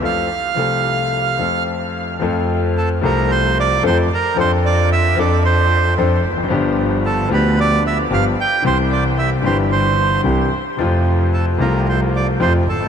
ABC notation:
X:1
M:4/4
L:1/16
Q:1/4=112
K:F
V:1 name="Bandoneon"
f12 z4 | z4 A2 B2 c2 d2 c2 B2 | c2 d2 e2 d2 c4 z4 | z4 A2 =B2 d2 e2 f2 g2 |
c2 d2 e2 c2 c4 z4 | z4 A2 B2 c2 d2 c2 A2 |]
V:2 name="Grand piano" clef=bass
[F,,F,A,CA]2 z2 [C,,C,F,A,CA]6 [F,,F,A,CA]6 | [F,,F,A,CA]6 [C,,C,F,A,CA]6 [F,,F,A,CA]2 z2 | [F,,F,CDA]6 [F,,F,CDA]6 [F,,F,CDA]2 z/2 E,,/2 F,,/2 _G,,/2 | [G,,,G,,F,=B,DG]6 [D,,D,F,B,DG]6 [G,,,G,,F,B,DG]2 z2 |
[C,,C,E,G,CG]6 [G,,,G,,E,G,CG]6 [C,,C,E,G,CG]2 z2 | [F,,C,F,A,F]6 [C,,C,F,A,F]6 [F,,C,F,A,F]2 z/2 G,,,/2 _A,,,/2 z/2 |]
V:3 name="Double bass" clef=bass
z16 | F,,6 C,,6 F,,2 z2 | F,,6 F,,6 F,,2 F,,,2 | G,,,6 D,,6 G,,,2 z2 |
C,,6 G,,,6 C,,2 z2 | F,,6 C,,6 F,,2 _A,,,2 |]